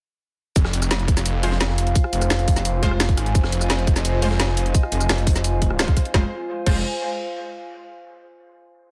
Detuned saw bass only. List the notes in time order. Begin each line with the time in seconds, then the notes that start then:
0.56 F1
2.13 F1
2.30 F1
3.18 G#1
3.35 F1
4.92 F1
5.10 F1
6.14 F1
6.67 F1